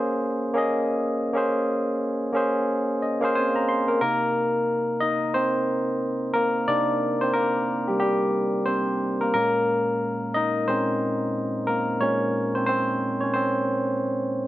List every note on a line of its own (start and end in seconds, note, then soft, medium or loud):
0.00 0.54 A#3 medium
0.00 0.55 C#4 medium
0.00 0.57 G#4 medium
0.00 1.37 C5 medium
0.54 1.20 A#3 medium
0.54 1.20 C#4 medium
0.54 1.21 G#4 medium
0.54 1.22 D#5 medium
1.33 2.15 A#3 medium
1.33 2.16 C#4 medium
1.33 2.17 G#4 medium
1.33 2.17 C5 medium
2.33 2.99 A#3 medium
2.33 3.00 C#4 medium
2.33 3.01 G#4 medium
2.33 3.01 C5 medium
3.02 3.21 D#5 medium
3.21 3.86 A#3 medium
3.21 3.87 C#4 medium
3.21 3.88 G#4 medium
3.21 3.34 C5 medium
3.21 3.34 F5 medium
3.35 3.86 C4 medium
3.35 3.85 C5 medium
3.35 3.54 G#5 medium
3.56 3.67 A#5 medium
3.69 3.99 C6 medium
3.88 4.00 A#3 medium
3.88 4.00 A#4 medium
4.01 4.97 C3 soft
4.01 4.98 A#3 medium
4.01 4.98 D#4 medium
4.01 5.04 A#4 medium
5.00 5.33 D#4 medium
5.00 5.35 D#5 medium
5.34 6.31 C4 medium
5.34 6.30 C5 medium
6.34 6.66 A#3 medium
6.34 6.65 A#4 medium
6.68 7.64 C3 soft
6.68 7.34 A#3 soft
6.68 7.19 D4 medium
6.68 7.64 D#4 medium
6.68 7.18 D5 loud
7.21 7.34 C4 medium
7.21 7.33 C5 medium
7.33 7.85 A#3 medium
7.33 7.89 A#4 medium
7.88 7.95 G3 medium
7.88 7.94 G4 medium
8.00 8.64 G3 medium
8.00 8.63 G4 medium
8.66 9.18 C4 medium
8.66 9.22 C5 medium
9.21 9.34 A#3 medium
9.21 9.32 A#4 medium
9.34 10.67 A#2 medium
9.34 10.68 G#3 medium
9.34 10.31 A#3 medium
9.34 10.68 C#4 medium
9.34 10.37 A#4 medium
10.34 10.66 D#4 medium
10.34 10.69 D#5 loud
10.68 10.98 A#2 soft
10.68 10.98 G#3 soft
10.68 11.65 C4 medium
10.68 10.99 C#4 soft
10.68 11.64 C5 medium
11.67 11.99 A#3 medium
11.67 11.98 A#4 medium
12.01 12.97 A#2 medium
12.01 12.97 G#3 soft
12.01 12.52 C#4 medium
12.01 12.51 C#5 medium
12.55 12.68 C4 medium
12.55 12.65 C5 medium
12.66 13.18 C4 medium
12.66 13.23 C5 medium
13.21 13.34 C#4 medium
13.21 13.33 C#5 medium
13.34 14.31 C4 medium
13.34 14.30 C5 medium